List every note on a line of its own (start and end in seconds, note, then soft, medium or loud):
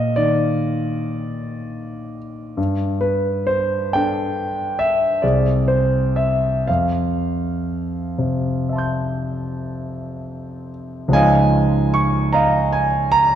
0.00 2.53 A#2 soft
0.00 0.16 D#5 medium
0.00 2.59 F5 medium
0.16 2.58 D#3 soft
0.16 2.16 D5 medium
2.57 5.18 G2 soft
3.01 3.48 B4 medium
3.47 3.94 C5 medium
3.93 5.19 D4 soft
3.93 5.19 A4 soft
3.93 4.79 G5 medium
4.79 5.22 E5 medium
5.22 6.64 C2 soft
5.22 6.64 C4 soft
5.22 6.64 G#4 soft
5.22 5.69 D5 medium
5.68 6.17 C5 medium
6.16 6.67 E5 medium
6.67 11.11 F2 soft
6.67 10.68 F5 medium
8.18 11.14 C3 soft
8.69 11.10 E5 soft
8.69 11.11 A5 soft
8.76 11.13 C6 soft
8.76 11.14 G6 soft
11.08 13.35 C#2 soft
11.08 13.35 F3 soft
11.08 13.35 G#3 soft
11.08 13.35 C#4 soft
11.13 13.35 D#4 soft
11.13 11.91 D#5 medium
11.13 11.91 F5 medium
11.13 11.95 G#5 medium
11.94 12.34 C#6 medium
12.33 12.71 D#5 medium
12.33 12.71 F5 medium
12.33 12.73 A#5 medium
12.73 13.13 G#5 medium
13.12 13.35 A#5 medium